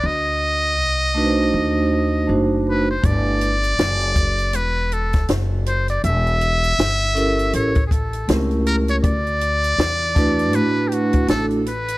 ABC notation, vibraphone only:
X:1
M:4/4
L:1/8
Q:"Swing 16ths" 1/4=80
K:Dmix
V:1 name="Vibraphone"
z3 [A,D_EFBc]3 [A,DEFc] z | [A,DEGB] z6 z | z3 [^CEGA_B] z2 [A,=C^CEGB]2 | z3 [A,DEFB]3 [A,DEFA] z |]